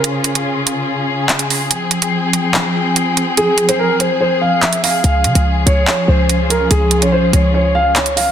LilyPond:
<<
  \new Staff \with { instrumentName = "Grand piano" } { \time 4/4 \key des \lydian \tempo 4 = 144 r1 | r1 | aes'8. c''16 bes'8 c''8 c''8 f''8 e''8 f''8 | f''4 r8 des''8 des''8 c''4 bes'8 |
aes'8. des''16 c''8 des''8 des''8 f''8 des''8 f''8 | }
  \new Staff \with { instrumentName = "String section" } { \time 4/4 \key des \lydian << { aes'1~ | aes'1~ | aes'1~ | aes'1~ |
aes'1 | } \\ { <des des' f'>1 | <f c' g''>1~ | <f c' g''>1 | <f des' f'>1~ |
<f des' f'>1 | } >> }
  \new Staff \with { instrumentName = "808-style bass" } { \clef bass \time 4/4 \key des \lydian r1 | r1 | r1 | des,8 des16 des,8. des,8 r8 des,4. |
des,8. c,8. des,2~ des,8 | }
  \new DrumStaff \with { instrumentName = "Drums" } \drummode { \time 4/4 hh8 hh16 hh16 r8 hh8 r4 <hc hh>16 hh16 hho8 | hh8 hh16 hh16 r8 hh8 hc4 hh8 hh8 | hh8 hh16 hh16 r8 hh8 r4 <hc hh>16 hh16 hho8 | hh8 hh16 hh16 r8 hh8 hc4 hh8 hh8 |
hh8 hh16 hh16 r8 hh8 r4 <hc hh>16 hh16 hho8 | }
>>